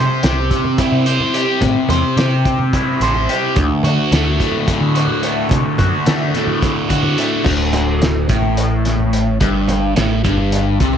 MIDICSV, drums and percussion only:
0, 0, Header, 1, 2, 480
1, 0, Start_track
1, 0, Tempo, 556070
1, 1403, Time_signature, 7, 3, 24, 8
1, 9474, End_track
2, 0, Start_track
2, 0, Title_t, "Drums"
2, 200, Note_on_c, 9, 42, 99
2, 210, Note_on_c, 9, 38, 118
2, 286, Note_off_c, 9, 42, 0
2, 296, Note_off_c, 9, 38, 0
2, 328, Note_on_c, 9, 64, 25
2, 414, Note_off_c, 9, 64, 0
2, 439, Note_on_c, 9, 36, 69
2, 440, Note_on_c, 9, 42, 66
2, 526, Note_off_c, 9, 36, 0
2, 526, Note_off_c, 9, 42, 0
2, 555, Note_on_c, 9, 63, 66
2, 555, Note_on_c, 9, 64, 68
2, 642, Note_off_c, 9, 63, 0
2, 642, Note_off_c, 9, 64, 0
2, 676, Note_on_c, 9, 42, 91
2, 677, Note_on_c, 9, 36, 92
2, 763, Note_off_c, 9, 42, 0
2, 764, Note_off_c, 9, 36, 0
2, 915, Note_on_c, 9, 42, 63
2, 922, Note_on_c, 9, 64, 29
2, 1001, Note_off_c, 9, 42, 0
2, 1008, Note_off_c, 9, 64, 0
2, 1036, Note_on_c, 9, 64, 71
2, 1123, Note_off_c, 9, 64, 0
2, 1159, Note_on_c, 9, 42, 75
2, 1245, Note_off_c, 9, 42, 0
2, 1388, Note_on_c, 9, 63, 96
2, 1394, Note_on_c, 9, 42, 84
2, 1397, Note_on_c, 9, 36, 102
2, 1474, Note_off_c, 9, 63, 0
2, 1480, Note_off_c, 9, 42, 0
2, 1483, Note_off_c, 9, 36, 0
2, 1627, Note_on_c, 9, 64, 92
2, 1639, Note_on_c, 9, 42, 67
2, 1649, Note_on_c, 9, 38, 35
2, 1713, Note_off_c, 9, 64, 0
2, 1725, Note_off_c, 9, 42, 0
2, 1735, Note_off_c, 9, 38, 0
2, 1763, Note_on_c, 9, 64, 26
2, 1849, Note_off_c, 9, 64, 0
2, 1877, Note_on_c, 9, 42, 86
2, 1887, Note_on_c, 9, 38, 108
2, 1963, Note_off_c, 9, 42, 0
2, 1973, Note_off_c, 9, 38, 0
2, 1991, Note_on_c, 9, 64, 29
2, 2077, Note_off_c, 9, 64, 0
2, 2108, Note_on_c, 9, 64, 28
2, 2118, Note_on_c, 9, 36, 78
2, 2120, Note_on_c, 9, 42, 62
2, 2194, Note_off_c, 9, 64, 0
2, 2204, Note_off_c, 9, 36, 0
2, 2206, Note_off_c, 9, 42, 0
2, 2232, Note_on_c, 9, 63, 60
2, 2232, Note_on_c, 9, 64, 66
2, 2318, Note_off_c, 9, 63, 0
2, 2318, Note_off_c, 9, 64, 0
2, 2358, Note_on_c, 9, 36, 90
2, 2359, Note_on_c, 9, 42, 80
2, 2445, Note_off_c, 9, 36, 0
2, 2446, Note_off_c, 9, 42, 0
2, 2599, Note_on_c, 9, 42, 69
2, 2610, Note_on_c, 9, 38, 34
2, 2686, Note_off_c, 9, 42, 0
2, 2696, Note_off_c, 9, 38, 0
2, 2711, Note_on_c, 9, 64, 66
2, 2798, Note_off_c, 9, 64, 0
2, 2841, Note_on_c, 9, 42, 74
2, 2927, Note_off_c, 9, 42, 0
2, 3070, Note_on_c, 9, 63, 82
2, 3075, Note_on_c, 9, 42, 88
2, 3078, Note_on_c, 9, 36, 105
2, 3157, Note_off_c, 9, 63, 0
2, 3161, Note_off_c, 9, 42, 0
2, 3164, Note_off_c, 9, 36, 0
2, 3306, Note_on_c, 9, 64, 81
2, 3319, Note_on_c, 9, 42, 74
2, 3392, Note_off_c, 9, 64, 0
2, 3406, Note_off_c, 9, 42, 0
2, 3423, Note_on_c, 9, 64, 25
2, 3510, Note_off_c, 9, 64, 0
2, 3559, Note_on_c, 9, 42, 92
2, 3569, Note_on_c, 9, 38, 111
2, 3645, Note_off_c, 9, 42, 0
2, 3655, Note_off_c, 9, 38, 0
2, 3787, Note_on_c, 9, 64, 25
2, 3800, Note_on_c, 9, 36, 73
2, 3803, Note_on_c, 9, 42, 68
2, 3873, Note_off_c, 9, 64, 0
2, 3886, Note_off_c, 9, 36, 0
2, 3889, Note_off_c, 9, 42, 0
2, 3895, Note_on_c, 9, 63, 67
2, 3895, Note_on_c, 9, 64, 64
2, 3981, Note_off_c, 9, 63, 0
2, 3981, Note_off_c, 9, 64, 0
2, 4038, Note_on_c, 9, 36, 99
2, 4038, Note_on_c, 9, 42, 89
2, 4124, Note_off_c, 9, 36, 0
2, 4124, Note_off_c, 9, 42, 0
2, 4262, Note_on_c, 9, 64, 26
2, 4278, Note_on_c, 9, 42, 74
2, 4348, Note_off_c, 9, 64, 0
2, 4364, Note_off_c, 9, 42, 0
2, 4378, Note_on_c, 9, 64, 70
2, 4464, Note_off_c, 9, 64, 0
2, 4515, Note_on_c, 9, 42, 79
2, 4601, Note_off_c, 9, 42, 0
2, 4741, Note_on_c, 9, 63, 86
2, 4757, Note_on_c, 9, 36, 114
2, 4757, Note_on_c, 9, 42, 97
2, 4827, Note_off_c, 9, 63, 0
2, 4843, Note_off_c, 9, 36, 0
2, 4843, Note_off_c, 9, 42, 0
2, 4990, Note_on_c, 9, 64, 91
2, 4997, Note_on_c, 9, 36, 78
2, 4997, Note_on_c, 9, 42, 80
2, 5076, Note_off_c, 9, 64, 0
2, 5083, Note_off_c, 9, 36, 0
2, 5083, Note_off_c, 9, 42, 0
2, 5112, Note_on_c, 9, 64, 28
2, 5198, Note_off_c, 9, 64, 0
2, 5234, Note_on_c, 9, 42, 87
2, 5244, Note_on_c, 9, 38, 107
2, 5320, Note_off_c, 9, 42, 0
2, 5330, Note_off_c, 9, 38, 0
2, 5351, Note_on_c, 9, 64, 27
2, 5438, Note_off_c, 9, 64, 0
2, 5465, Note_on_c, 9, 64, 28
2, 5478, Note_on_c, 9, 42, 67
2, 5488, Note_on_c, 9, 38, 31
2, 5552, Note_off_c, 9, 64, 0
2, 5564, Note_off_c, 9, 42, 0
2, 5574, Note_off_c, 9, 38, 0
2, 5585, Note_on_c, 9, 63, 68
2, 5585, Note_on_c, 9, 64, 70
2, 5672, Note_off_c, 9, 63, 0
2, 5672, Note_off_c, 9, 64, 0
2, 5703, Note_on_c, 9, 64, 27
2, 5718, Note_on_c, 9, 36, 105
2, 5719, Note_on_c, 9, 42, 75
2, 5729, Note_on_c, 9, 38, 33
2, 5789, Note_off_c, 9, 64, 0
2, 5804, Note_off_c, 9, 36, 0
2, 5805, Note_off_c, 9, 42, 0
2, 5816, Note_off_c, 9, 38, 0
2, 5958, Note_on_c, 9, 36, 70
2, 5958, Note_on_c, 9, 42, 66
2, 5968, Note_on_c, 9, 38, 37
2, 6044, Note_off_c, 9, 36, 0
2, 6044, Note_off_c, 9, 42, 0
2, 6054, Note_off_c, 9, 38, 0
2, 6067, Note_on_c, 9, 64, 73
2, 6153, Note_off_c, 9, 64, 0
2, 6188, Note_on_c, 9, 64, 29
2, 6197, Note_on_c, 9, 42, 70
2, 6274, Note_off_c, 9, 64, 0
2, 6284, Note_off_c, 9, 42, 0
2, 6309, Note_on_c, 9, 64, 30
2, 6395, Note_off_c, 9, 64, 0
2, 6425, Note_on_c, 9, 63, 104
2, 6438, Note_on_c, 9, 49, 101
2, 6440, Note_on_c, 9, 36, 105
2, 6512, Note_off_c, 9, 63, 0
2, 6525, Note_off_c, 9, 49, 0
2, 6526, Note_off_c, 9, 36, 0
2, 6672, Note_on_c, 9, 64, 97
2, 6676, Note_on_c, 9, 42, 72
2, 6759, Note_off_c, 9, 64, 0
2, 6762, Note_off_c, 9, 42, 0
2, 6796, Note_on_c, 9, 64, 27
2, 6882, Note_off_c, 9, 64, 0
2, 6920, Note_on_c, 9, 42, 87
2, 6930, Note_on_c, 9, 38, 106
2, 7006, Note_off_c, 9, 42, 0
2, 7017, Note_off_c, 9, 38, 0
2, 7157, Note_on_c, 9, 42, 67
2, 7161, Note_on_c, 9, 36, 99
2, 7243, Note_off_c, 9, 42, 0
2, 7247, Note_off_c, 9, 36, 0
2, 7270, Note_on_c, 9, 63, 68
2, 7270, Note_on_c, 9, 64, 65
2, 7357, Note_off_c, 9, 63, 0
2, 7357, Note_off_c, 9, 64, 0
2, 7400, Note_on_c, 9, 42, 86
2, 7487, Note_off_c, 9, 42, 0
2, 7641, Note_on_c, 9, 42, 68
2, 7652, Note_on_c, 9, 38, 30
2, 7728, Note_off_c, 9, 42, 0
2, 7738, Note_off_c, 9, 38, 0
2, 7763, Note_on_c, 9, 64, 68
2, 7849, Note_off_c, 9, 64, 0
2, 7881, Note_on_c, 9, 42, 73
2, 7968, Note_off_c, 9, 42, 0
2, 8119, Note_on_c, 9, 42, 93
2, 8123, Note_on_c, 9, 36, 99
2, 8123, Note_on_c, 9, 63, 80
2, 8205, Note_off_c, 9, 42, 0
2, 8209, Note_off_c, 9, 36, 0
2, 8209, Note_off_c, 9, 63, 0
2, 8354, Note_on_c, 9, 64, 81
2, 8362, Note_on_c, 9, 42, 78
2, 8440, Note_off_c, 9, 64, 0
2, 8448, Note_off_c, 9, 42, 0
2, 8476, Note_on_c, 9, 64, 25
2, 8562, Note_off_c, 9, 64, 0
2, 8600, Note_on_c, 9, 42, 94
2, 8611, Note_on_c, 9, 38, 108
2, 8686, Note_off_c, 9, 42, 0
2, 8697, Note_off_c, 9, 38, 0
2, 8844, Note_on_c, 9, 42, 61
2, 8845, Note_on_c, 9, 36, 96
2, 8930, Note_off_c, 9, 42, 0
2, 8932, Note_off_c, 9, 36, 0
2, 8953, Note_on_c, 9, 63, 60
2, 8953, Note_on_c, 9, 64, 68
2, 9039, Note_off_c, 9, 63, 0
2, 9039, Note_off_c, 9, 64, 0
2, 9083, Note_on_c, 9, 42, 83
2, 9170, Note_off_c, 9, 42, 0
2, 9324, Note_on_c, 9, 42, 65
2, 9326, Note_on_c, 9, 36, 93
2, 9410, Note_off_c, 9, 42, 0
2, 9413, Note_off_c, 9, 36, 0
2, 9436, Note_on_c, 9, 64, 70
2, 9474, Note_off_c, 9, 64, 0
2, 9474, End_track
0, 0, End_of_file